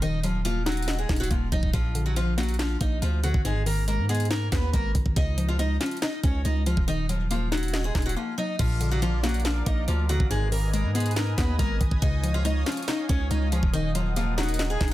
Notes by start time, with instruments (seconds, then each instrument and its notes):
Already playing: 808-style bass D#1
0.02 synth pluck D#3, steel-string acoustic guitar D#4 D#5, closed hi-hat
0.24 steel-string acoustic guitar F3 F4, synth pluck F#3, closed hi-hat
0.45 steel-string acoustic guitar F3 F4, synth pluck A#3, closed hi-hat
0.66 steel-string acoustic guitar F#3 F#4, synth pluck D#4, snare, clap, closed hi-hat
0.72 closed hi-hat
0.77 closed hi-hat
0.82 closed hi-hat
0.88 synth pluck D#5, snare, clap, closed hi-hat
0.99 steel-string acoustic guitar G#3 G#4
1.09 808-style bass D#1, synth pluck D#4, kick, snare, clap, closed hi-hat
1.16 steel-string acoustic guitar F#4, closed hi-hat
1.21 steel-string acoustic guitar F#3, closed hi-hat
1.31 808-style bass D#1, steel-string acoustic guitar F3 F4, synth pluck A#3, kick, closed hi-hat
1.52 808-style bass D#1, synth pluck F#3, steel-string acoustic guitar D#4 D#5, kick, closed hi-hat
1.63 808-style bass D#1, kick
1.73 808-style bass A#1, synth pluck A#2, steel-string acoustic guitar F3 F4, kick, closed hi-hat
1.95 synth pluck D3, closed hi-hat
2.06 steel-string acoustic guitar F#3 F#4
2.16 synth pluck F3, steel-string acoustic guitar F3 F4, closed hi-hat
2.38 steel-string acoustic guitar F#3 F#4, synth pluck A#3, snare, clap, closed hi-hat
2.43 closed hi-hat
2.49 closed hi-hat
2.54 closed hi-hat
2.59 steel-string acoustic guitar F3 F4, synth pluck D4, snare, clap, closed hi-hat
2.81 808-style bass A#1, synth pluck A#3, steel-string acoustic guitar D#4 D#5, kick, closed hi-hat
3.02 808-style bass D2, synth pluck F3, steel-string acoustic guitar F3 F4, closed hi-hat
3.24 synth pluck D3, steel-string acoustic guitar F#3 F#4, closed hi-hat
3.34 808-style bass G#1, kick
3.45 synth pluck G#2, steel-string acoustic guitar G#3 G#4, closed hi-hat
3.66 synth pluck D#3, steel-string acoustic guitar A#3 A#4, open hi-hat
3.88 synth pluck G#3, steel-string acoustic guitar A#3 A#4, closed hi-hat
3.99 808-style bass G#2
4.09 steel-string acoustic guitar G#3 G#4, synth pluck B3, closed hi-hat
4.15 closed hi-hat
4.20 closed hi-hat
4.25 closed hi-hat
4.31 steel-string acoustic guitar A#3 A#4, synth pluck D#4, snare, clap, closed hi-hat
4.52 808-style bass D#2, synth pluck B3, steel-string acoustic guitar B3 B4, kick, snare, clap, closed hi-hat
4.73 808-style bass G#1, synth pluck G#3, steel-string acoustic guitar A#3 A#4, kick, closed hi-hat
4.95 808-style bass G#1, synth pluck D#3, kick, closed hi-hat
5.06 808-style bass G#1, kick
5.16 808-style bass C#2, synth pluck C#3, steel-string acoustic guitar D#4 D#5, kick, closed hi-hat
5.38 synth pluck F3, closed hi-hat
5.48 steel-string acoustic guitar F3 F4
5.59 synth pluck G#3, steel-string acoustic guitar D#4 D#5, closed hi-hat
5.80 steel-string acoustic guitar F3 F4, synth pluck C#4, snare, clap, closed hi-hat
5.86 closed hi-hat
5.91 closed hi-hat
5.97 closed hi-hat
6.02 steel-string acoustic guitar D#4 D#5, synth pluck D#4, snare, clap, closed hi-hat
6.23 808-style bass C#2, synth pluck C#4, steel-string acoustic guitar C#4 C#5, kick, closed hi-hat
6.45 808-style bass C#2, synth pluck G#3, steel-string acoustic guitar D#4 D#5, closed hi-hat
6.66 synth pluck F3, steel-string acoustic guitar F3 F4, closed hi-hat
6.77 808-style bass D#1, kick
6.88 synth pluck D#3, steel-string acoustic guitar D#4 D#5, closed hi-hat
7.09 steel-string acoustic guitar F3 F4, synth pluck F#3, closed hi-hat
7.31 steel-string acoustic guitar F3 F4, synth pluck A#3, closed hi-hat
7.52 steel-string acoustic guitar F#3 F#4, synth pluck D#4, snare, clap, closed hi-hat
7.57 closed hi-hat
7.63 closed hi-hat
7.68 closed hi-hat
7.74 synth pluck D#5, snare, clap, closed hi-hat
7.84 steel-string acoustic guitar G#3 G#4
7.95 808-style bass D#1, synth pluck D#4, kick, snare, clap, closed hi-hat
8.02 steel-string acoustic guitar F#4, closed hi-hat
8.07 steel-string acoustic guitar F#3, closed hi-hat
8.16 steel-string acoustic guitar F3 F4, synth pluck A#3
8.38 synth pluck F#3, steel-string acoustic guitar D#4 D#5
8.59 808-style bass A#1, synth pluck A#2, steel-string acoustic guitar F3 F4, analog synth pad A#4 D5 F5 D6, kick, closed hi-hat, crash
8.81 synth pluck D3, closed hi-hat
8.91 steel-string acoustic guitar F#3 F#4
9.02 synth pluck F3, steel-string acoustic guitar F3 F4, closed hi-hat
9.23 steel-string acoustic guitar F#3 F#4, synth pluck A#3, snare, clap, closed hi-hat
9.29 closed hi-hat
9.34 closed hi-hat
9.40 closed hi-hat
9.45 steel-string acoustic guitar F3 F4, synth pluck D4, snare, clap, closed hi-hat
9.66 808-style bass A#1, synth pluck A#3, steel-string acoustic guitar D#4 D#5, kick, closed hi-hat
9.88 808-style bass D2, synth pluck F3, steel-string acoustic guitar F3 F4, closed hi-hat
10.09 synth pluck D3, steel-string acoustic guitar F#3 F#4, closed hi-hat
10.20 808-style bass G#1, kick
10.30 synth pluck G#2, steel-string acoustic guitar G#3 G#4, analog synth pad B4 D#5 G#5 D#6, closed hi-hat
10.52 synth pluck D#3, steel-string acoustic guitar A#3 A#4, open hi-hat
10.74 synth pluck G#3, steel-string acoustic guitar A#3 A#4, closed hi-hat
10.84 808-style bass G#2
10.95 steel-string acoustic guitar G#3 G#4, synth pluck B3, closed hi-hat
11.00 closed hi-hat
11.06 closed hi-hat
11.11 closed hi-hat
11.16 steel-string acoustic guitar A#3 A#4, synth pluck D#4, snare, clap, closed hi-hat
11.38 808-style bass D#2, synth pluck B3, steel-string acoustic guitar B3 B4, kick, snare, clap, closed hi-hat
11.59 808-style bass G#1, synth pluck G#3, steel-string acoustic guitar A#3 A#4, kick, closed hi-hat
11.81 808-style bass G#1, synth pluck D#3, kick, closed hi-hat
11.91 808-style bass G#1, kick
12.02 808-style bass C#2, synth pluck C#3, steel-string acoustic guitar D#4 D#5, analog synth pad C#5 F5, kick, closed hi-hat
12.24 synth pluck F3, closed hi-hat
12.34 steel-string acoustic guitar F3 F4
12.45 synth pluck G#3, steel-string acoustic guitar D#4 D#5, closed hi-hat
12.66 steel-string acoustic guitar F3 F4, synth pluck C#4, snare, clap, closed hi-hat
12.72 closed hi-hat
12.77 closed hi-hat
12.83 closed hi-hat
12.88 steel-string acoustic guitar D#4 D#5, synth pluck D#4, snare, clap, closed hi-hat
13.09 808-style bass C#2, synth pluck C#4, steel-string acoustic guitar C#4 C#5, kick, closed hi-hat
13.31 808-style bass C#2, synth pluck G#3, steel-string acoustic guitar D#4 D#5, closed hi-hat
13.52 synth pluck F3, steel-string acoustic guitar F3 F4, closed hi-hat
13.63 808-style bass D#1, kick
13.73 synth pluck D#3, steel-string acoustic guitar D#4 D#5, analog synth pad A#4 D#5 F#5 D#6, closed hi-hat
13.95 steel-string acoustic guitar F3 F4, synth pluck F#3, closed hi-hat
14.16 steel-string acoustic guitar F3 F4, synth pluck A#3, closed hi-hat
14.38 steel-string acoustic guitar F#3 F#4, synth pluck D#4, snare, clap, closed hi-hat
14.43 closed hi-hat
14.49 closed hi-hat
14.54 closed hi-hat
14.59 synth pluck D#5, snare, clap, closed hi-hat
14.70 steel-string acoustic guitar G#3 G#4
14.81 808-style bass D#1, synth pluck D#4, kick, snare, clap, closed hi-hat
14.88 closed hi-hat